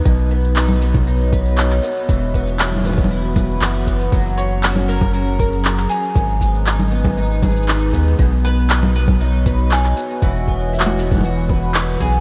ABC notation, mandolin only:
X:1
M:4/4
L:1/8
Q:1/4=118
K:B
V:1 name="Mandolin"
z8 | z8 | z c2 A A3 G- | G4- G z3 |
z B2 B3 G2 | F4 z3 G |]